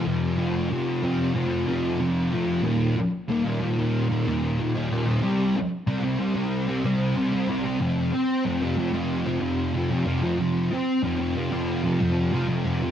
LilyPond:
\new Staff \with { instrumentName = "Distorted electric guitar" } { \clef bass \time 4/4 \key f \dorian \tempo 4 = 93 <f, c f>8 <c f>8 <f, c f>8 <c f>8 <f, c f>8 <c f>8 <f, c f>8 <c f>8 | <ees, bes, ees>4 <ees, bes, ees>16 <bes, ees>16 <ees, bes, ees>16 <bes, ees>8 <bes, ees>16 <ees, bes, ees>8 <ees, bes, ees>16 <bes, ees>16 <ees, bes, ees>16 <bes, ees>16 | <c g c'>4 <c g c'>16 <g c'>16 <c g c'>16 <g c'>8 <g c'>16 <c g c'>8 <c g c'>16 <g c'>16 <c g c'>16 <g c'>16 | <f, c f>4 <f, c f>16 <c f>16 <f, c f>16 <c f>8 <c f>16 <f, c f>8 <f, c f>16 <c f>16 <f, c f>16 <c f>16 |
<f, c f>4 <f, c f>16 <c f>16 <f, c f>16 <c f>8 <c f>16 <f, c f>8 <f, c f>16 <c f>16 <f, c f>16 <c f>16 | }